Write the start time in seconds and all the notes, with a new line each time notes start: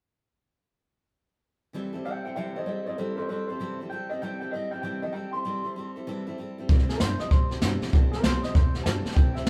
1.73 C3 E3 G3 C4 E4 A4
1.93 G3 C4 E4 A4
2.05 G3 C4 E4 A4 E5 G5
2.24 G3 C4 E4 A4 E5 G5
2.36 C3 E3 G3 C4 E4 A4 E5 G5
2.56 G3 C4 E4 A4 C5 D#5
2.66 G3 C4 E4 A4 C5 D#5
2.86 G3 C4 E4 A4 C5 D#5
2.98 C3 E3 G3 C4 E4 A4 C5
3.16 G3 C4 E4 A4 C5
3.29 G3 C4 E4 A4 C5
3.48 G3 C4 E4 A4 C5
3.60 C3 E3 G3 C4 E4 A4
3.80 G3 C4 E4 A4
3.90 G3 C4 E4 A4 G5
4.10 C4 E4 A4 D#5
4.14 G3
4.22 C3 E3 G3 C4 E4 A4 G5
4.41 G3 C4 E4 A4 G5
4.51 G3 C4 E4 D#5
4.56 A4
4.71 C4 E4 A4 G5
4.75 G3
4.82 C3 E3 G3 C4 E4 A4 G5
5.02 G3 C4 E4 A4 D#5
5.13 G3 C4 E4 A4 G5
5.33 G3 C4 E4 A4 C6
5.45 C3 E3 G3 C4 E4 A4
5.64 G3 C4 E4 A4
5.76 G3 C4 E4 A4
5.96 G3 C4 E4 A4
6.07 C3 E3 G3 C4 E4 A4
6.27 G3 C4 E4 A4
6.38 G3 C4 E4 A4
6.58 G3 C4 E4 A4
6.69 C2 C3 E3 G3 C4 E4 A4, kick, snare
6.79 snare
6.89 G3 C4 E4 A4 A#4, snare
7.00 G2 C3 E3 G3 C4 E4 A4 C5, snare, hi-hat pedal
7.18 G3 C4 E4 A4 D#5, muted upright bass stroke, snare
7.30 G3 C4 E4 A4 C5, kick, snare
7.49 A2 G3 C4 E4 A4, snare
7.61 G2 C3 E3 G3 C4 E4 A4, snare, hi-hat pedal
7.82 G3 C4 E4 A4, muted upright bass stroke, snare
7.88 snare
7.93 C2 C3 E3 G3 C4 E4 A4, kick, snare
8.12 G3 C4 E4 A4 A#4, muted upright bass stroke, snare
8.23 C2 C3 E3 G3 C4 E4 A4 C5, snare, hi-hat pedal
8.43 G3 C4 E4 A4 D#5, muted upright bass stroke, snare
8.54 E2 G3 C4 E4 A4 C5, kick, snare
8.74 G3 C4 E4 A4, muted upright bass stroke, snare
8.84 G2 C3 E3 G3 C4 E4 A4 A5, snare, hi-hat pedal
9.05 G3 C4 E4 A4, muted upright bass stroke, snare
9.11 G5, snare
9.16 C2 C3 E3 G3 C4 E4 A4, kick, snare
9.35 G3 C4 E4 A4 E5, muted upright bass stroke, snare
9.46 C3 E3 G3, snare, hi-hat pedal